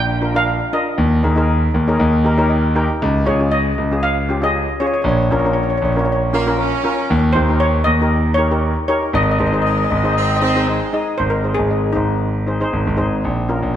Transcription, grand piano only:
0.00 0.56 A#1 medium
0.98 1.19 D#2 loud
1.24 1.66 D#2 medium
1.74 1.95 D#2 medium
2.00 2.85 D#2 loud
3.02 3.23 C#2 loud
3.27 3.70 C#2 medium
3.78 4.64 C#2 medium
5.04 5.26 A#1 loud
5.31 5.74 A#1 medium
5.82 6.68 A#1 medium
7.10 7.32 D#2 loud
7.36 7.78 D#2 loud
7.86 8.72 D#2 medium
9.13 9.35 G#1 loud
9.40 9.83 G#1 medium
9.91 10.77 G#1 medium
11.19 11.52 G#1 medium
11.59 11.90 G#1 medium
11.96 12.60 G#1 medium
12.73 12.84 G#1 medium
12.87 12.96 G#1 medium
12.99 13.20 G#1 medium
13.24 13.57 A#1 medium
13.63 13.76 A#1 medium

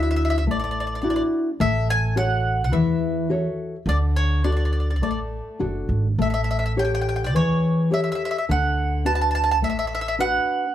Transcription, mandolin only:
0.03 0.08 E5 medium
0.11 0.15 E5 medium
0.16 0.22 E5 medium
0.25 0.29 E5 medium
0.30 0.36 E5 medium
0.38 0.44 E5 medium
0.51 0.56 D5 medium
0.60 0.63 D5 medium
0.64 0.70 D5 soft
0.71 0.77 D5 soft
0.80 0.86 D5 medium
0.87 0.92 D5 soft
0.95 1.00 D5 soft
1.02 1.07 D5 soft
1.10 1.15 D5 medium
1.16 1.22 D5 medium
1.61 1.87 E5 medium
1.90 2.15 G#5 loud
2.17 2.63 F#5 medium
2.64 2.72 F#5 medium
2.73 3.82 E5 medium
3.89 3.96 D5 medium
4.16 4.42 C#5 medium
4.44 4.51 D5 medium
4.52 4.56 D5 soft
4.57 4.64 D5 soft
4.65 4.71 D5 soft
4.73 4.79 D5 soft
4.80 4.87 D5 soft
4.90 4.95 D5 soft
4.96 5.02 D5 soft
5.03 5.10 D5 soft
5.11 5.18 D5 soft
6.22 6.27 E5 medium
6.30 6.33 E5 soft
6.30 6.40 E5 medium
6.44 6.50 E5 medium
6.51 6.56 E5 medium
6.59 6.64 E5 medium
6.66 6.71 E5 medium
6.79 6.83 G5 medium
6.85 6.91 G5 medium
6.95 7.00 G5 medium
7.02 7.07 G5 medium
7.09 7.14 G5 medium
7.16 7.22 G5 soft
7.24 7.34 D5 medium
7.24 7.30 G5 medium
7.36 7.88 C#5 medium
7.94 8.00 E5 medium
8.04 8.09 E5 medium
8.12 8.14 E5 medium
8.12 8.22 E5 medium
8.25 8.30 E5 medium
8.31 8.37 E5 medium
8.38 8.44 E5 medium
8.51 9.03 F#5 medium
9.06 9.13 A5 medium
9.15 9.20 A5 medium
9.22 9.28 A5 medium
9.31 9.34 A5 medium
9.35 9.42 A5 medium
9.44 9.50 A5 medium
9.51 9.58 A5 medium
9.64 9.68 E5 medium
9.70 9.77 E5 medium
9.79 9.85 E5 medium
9.87 9.93 E5 medium
9.95 10.00 E5 medium
10.01 10.07 E5 medium
10.08 10.15 E5 medium
10.20 10.73 F#5 loud

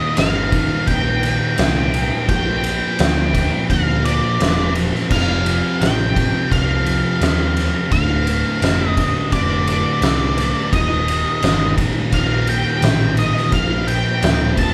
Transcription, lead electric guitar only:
0.00 0.18 D#5 medium
0.18 0.90 F5 loud
0.87 2.28 G5 loud
2.29 3.66 G5 loud
3.70 4.05 F5 loud
4.06 4.72 D5 medium
5.12 5.84 F5 loud
5.81 6.54 G5 loud
6.52 7.91 F5 loud
7.92 8.89 F5 loud
8.89 9.32 D#5 loud
9.33 9.68 D5 medium
9.69 10.69 D5 medium
10.73 11.74 D#5 medium
12.14 12.49 F5 loud
12.49 13.14 G5 loud
13.19 13.51 D#5 medium
13.54 13.89 F5 medium
13.87 14.53 G5 loud
14.59 14.74 A5 loud

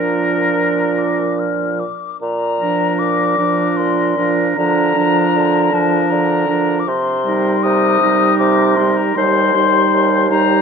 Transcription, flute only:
0.00 0.44 A#5 soft
0.54 1.00 A#5 soft
0.98 1.41 D6 medium
1.39 1.81 F6 medium
1.80 2.20 D6 medium
2.21 3.00 A#5 medium
2.99 3.78 D6 medium
3.77 4.29 C6 medium
4.56 5.75 A#5 medium
5.73 6.12 A5 medium
6.10 6.81 A#5 medium
6.80 6.90 D6 medium
6.88 7.65 C6 medium
7.63 8.38 D#6 medium
8.39 8.78 D6 medium
8.77 8.99 C6 medium
8.97 9.17 A#5 medium
9.15 10.30 C6 loud
10.30 10.62 A#5 loud

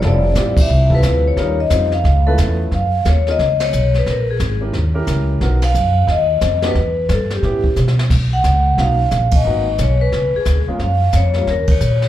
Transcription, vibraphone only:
0.08 0.62 D5 medium
0.61 0.94 E5 loud
0.95 1.24 B4 medium
1.28 1.61 C#5 medium
1.60 1.91 D#5 medium
1.94 2.36 F5 medium
2.27 2.58 A4 medium
2.74 3.04 F5 loud
3.09 3.29 C#5 medium
3.31 3.63 D#5 loud
3.65 3.97 C#5 medium
3.98 4.02 B4 medium
4.10 4.28 A#4 medium
4.31 4.61 G#4 medium
5.64 6.11 F5 loud
6.11 6.66 D#5 medium
6.67 7.13 B4 medium
7.13 7.31 A4 medium
7.34 7.76 G4 medium
8.33 8.80 F#5 loud
8.79 9.35 F5 loud
9.35 9.77 D#5 medium
9.81 10.00 C#5 medium
10.01 10.36 B4 medium
10.36 10.67 G#4 medium
10.82 11.16 F5 medium
11.16 11.37 C#5 medium
11.38 11.48 C#5 medium
11.51 11.69 A#4 medium
11.72 12.06 C#5 medium

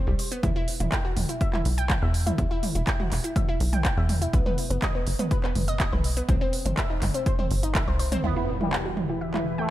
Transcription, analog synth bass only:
0.07 0.15 C2 loud
0.43 0.52 E2 loud
0.80 0.88 E1 loud
1.16 1.25 E1 medium
1.65 1.96 B1 loud
2.02 2.32 E2 loud
2.38 2.47 E2 loud
2.75 2.83 E1 loud
3.12 3.20 E1 medium
3.60 3.91 B1 loud
3.97 4.27 E2 loud
4.33 4.42 B1 loud
4.70 4.78 F#1 loud
5.07 5.15 F#1 medium
5.55 5.86 F#1 loud
5.92 6.23 B1 medium
6.29 6.37 C2 medium
6.66 6.74 G1 loud
7.02 7.10 G1 medium
7.51 7.81 G1 loud
7.88 8.18 C2 medium
8.24 9.70 E2 medium

